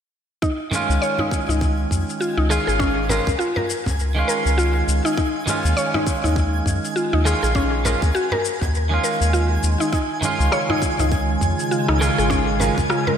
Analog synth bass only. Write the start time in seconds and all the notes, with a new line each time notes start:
0.90 C#2
1.49 C#2
1.91 F2
2.38 C#2
2.68 G#1
3.27 C#2
3.86 C#2
4.46 C#2
4.88 C#2
5.65 D#2
6.24 D#2
6.66 F#2
7.13 D#2
7.43 A#1
8.02 D#2
8.62 D#2
9.21 D#2
9.63 D#2
10.40 C#2
11.00 C#2
11.41 F2
11.89 C#2
12.19 G#1
12.78 C#2